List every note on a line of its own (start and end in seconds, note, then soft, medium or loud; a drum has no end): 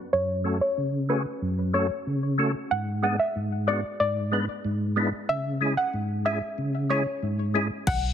0.13 0.61 F#2 medium
0.13 0.38 C#5 loud
0.44 0.58 A3 medium
0.44 0.58 C#4 medium
0.44 0.58 F#4 medium
0.44 0.58 A4 medium
0.61 0.74 C#5 medium
0.77 1.25 C#3 medium
1.09 1.22 A3 medium
1.09 1.22 C#4 medium
1.09 1.23 F#4 medium
1.09 1.23 G#4 medium
1.09 1.22 B4 medium
1.42 1.90 F#2 medium
1.73 1.87 A3 medium
1.73 1.87 C#4 medium
1.73 1.87 F#4 medium
1.73 1.87 A4 medium
1.73 1.87 C#5 medium
2.07 2.55 C#3 medium
2.38 2.51 A3 medium
2.38 2.51 C#4 medium
2.38 2.52 F#4 medium
2.38 2.52 A4 medium
2.71 3.19 G#2 medium
2.71 2.83 F#5 medium
3.03 3.16 G#3 medium
3.03 3.16 B3 medium
3.03 3.16 D4 medium
3.03 3.17 G#4 medium
3.03 3.16 F#5 medium
3.19 3.32 E5 medium
3.36 3.84 G#2 medium
3.67 3.80 G#3 medium
3.67 3.81 B3 medium
3.67 3.81 D4 medium
3.67 3.81 F#4 medium
3.67 3.80 D5 medium
4.00 4.48 G#2 medium
4.00 4.45 D5 medium
4.32 4.45 G#3 medium
4.32 4.45 B3 medium
4.32 4.45 D4 medium
4.32 4.46 B4 medium
4.65 5.13 G#2 medium
4.96 5.09 G#3 medium
4.96 5.10 B3 medium
4.96 5.10 D4 medium
4.96 5.10 E4 medium
5.29 5.77 C#3 medium
5.29 5.54 E5 loud
5.61 5.74 G#3 medium
5.61 5.74 C#4 medium
5.61 5.74 E4 medium
5.61 5.75 G#4 medium
5.77 5.90 F#5 medium
5.94 6.42 G#2 medium
6.25 6.38 G#3 medium
6.25 6.39 C#4 medium
6.25 6.39 E4 medium
6.25 6.39 G#4 medium
6.25 6.38 E5 medium
6.58 7.06 C#3 medium
6.90 7.03 G#3 medium
6.90 7.03 C#4 medium
6.90 7.03 E4 medium
6.90 7.04 G#4 medium
6.90 7.03 C#5 medium
7.23 7.71 G#2 medium
7.54 7.67 G#3 medium
7.54 7.68 C#4 medium
7.54 7.68 E4 medium
7.54 7.68 G#4 medium
7.87 8.13 B1 loud
7.87 8.00 F#5 loud
7.87 kick loud
7.87 closed hi-hat medium
7.87 crash medium